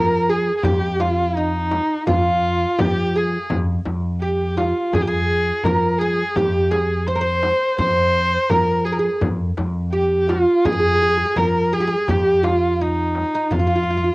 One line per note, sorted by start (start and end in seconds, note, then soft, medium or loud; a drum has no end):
0.00 0.50 F3 medium
0.00 0.29 A#4 medium
0.00 0.31 A#4 medium
0.29 0.64 G#4 medium
0.29 0.56 G#4 medium
0.46 darbuka ka soft
0.57 0.65 G#4 medium
0.63 1.78 F2 loud
0.63 1.02 G4 medium
0.63 0.99 G4 medium
0.63 darbuka dum medium
0.63 frame drum medium
1.00 1.37 F4 medium
1.00 darbuka tek medium
1.00 frame drum medium
1.35 2.07 D#4 medium
1.35 2.10 D#4 medium
1.71 darbuka tek medium
1.71 frame drum medium
2.07 2.65 F2 medium
2.07 2.79 F4 medium
2.07 2.81 F4 medium
2.07 frame drum medium
2.07 darbuka dum medium
2.43 darbuka ka soft
2.79 3.36 F3 medium
2.79 3.15 G4 medium
2.79 3.19 G4 medium
2.79 frame drum loud
2.79 darbuka dum medium
3.16 3.48 G#4 medium
3.16 3.52 G#4 medium
3.33 darbuka ka soft
3.50 3.79 F2 medium
3.50 frame drum medium
3.50 darbuka dum medium
3.85 4.72 F2 medium
3.85 darbuka tek medium
3.85 frame drum medium
4.22 4.59 G4 medium
4.22 4.57 G4 medium
4.22 darbuka ka soft
4.57 4.94 F4 medium
4.57 4.95 F4 medium
4.57 darbuka tek medium
4.57 frame drum medium
4.93 5.50 F2 medium
4.93 5.03 G#4 medium
4.93 5.06 G#4 medium
4.93 frame drum medium
4.93 darbuka dum medium
5.02 5.09 G4 medium
5.07 5.65 G#4 medium
5.07 5.66 G#4 medium
5.47 darbuka ka soft
5.63 6.22 F3 medium
5.63 6.00 A#4 medium
5.63 6.01 A#4 medium
5.63 darbuka dum medium
5.63 frame drum medium
5.99 6.37 G#4 medium
5.99 6.34 G#4 medium
6.18 darbuka ka soft
6.36 7.51 F2 loud
6.36 6.72 G4 medium
6.36 6.71 G4 medium
6.36 frame drum medium
6.36 darbuka dum medium
6.71 7.08 G#4 medium
6.71 7.07 G#4 medium
6.71 darbuka tek medium
6.71 frame drum medium
7.07 7.78 C5 medium
7.07 7.15 C5 medium
7.07 darbuka ka soft
7.15 7.21 A#4 medium
7.21 7.77 C5 medium
7.43 darbuka tek medium
7.43 frame drum medium
7.78 8.36 F2 medium
7.78 8.51 C5 loud
7.78 8.51 C5 medium
7.78 darbuka dum medium
7.78 frame drum medium
8.32 darbuka ka soft
8.49 9.08 F3 medium
8.49 8.86 A#4 medium
8.49 frame drum medium
8.49 darbuka dum medium
8.68 darbuka ka soft
8.84 9.21 G#4 medium
8.84 8.92 G#4 medium
8.92 8.99 A#4 medium
8.99 9.20 G#4 medium
9.05 darbuka ka soft
9.21 9.51 F2 medium
9.21 frame drum medium
9.21 darbuka dum loud
9.57 10.44 F2 medium
9.57 darbuka tek medium
9.57 frame drum medium
9.93 10.30 G4 medium
9.93 10.32 G4 medium
10.29 10.62 F4 medium
10.29 10.67 F4 medium
10.29 darbuka tek medium
10.29 frame drum medium
10.65 11.23 F2 medium
10.65 11.39 G#4 loud
10.65 10.71 G#4 medium
10.65 darbuka dum medium
10.65 frame drum medium
10.72 10.79 G#4 medium
10.80 10.87 G#4 medium
10.88 10.94 G#4 medium
10.95 11.01 G#4 medium
11.01 11.08 G#4 medium
11.01 darbuka ka soft
11.10 11.16 G#4 medium
11.17 11.24 G#4 medium
11.17 darbuka ka soft
11.26 11.33 G#4 medium
11.36 11.94 F3 medium
11.36 11.72 A#4 medium
11.36 11.75 A#4 medium
11.36 frame drum medium
11.36 darbuka dum medium
11.73 11.80 G#4 medium
11.73 12.12 G#4 medium
11.80 11.87 G4 medium
11.87 12.09 G#4 medium
12.08 13.23 F2 loud
12.08 12.43 G4 medium
12.08 12.46 G4 medium
12.08 darbuka dum medium
12.08 frame drum medium
12.43 12.80 F4 medium
12.43 12.84 F4 medium
12.43 darbuka tek medium
12.43 frame drum medium
12.81 13.34 D#4 medium
12.81 13.54 D#4 medium
13.15 darbuka tek medium
13.15 frame drum medium
13.35 13.52 D#4 medium
13.51 14.09 F2 medium
13.51 13.58 F4 medium
13.51 14.15 F4 medium
13.51 darbuka dum medium
13.51 frame drum medium
13.59 13.66 F4 soft
13.67 13.74 F4 medium
13.76 13.82 F4 soft
13.83 13.89 F4 soft
13.87 13.96 F4 soft
13.87 darbuka ka soft
13.97 14.03 F4 medium
14.04 14.12 F4 soft
14.04 darbuka ka soft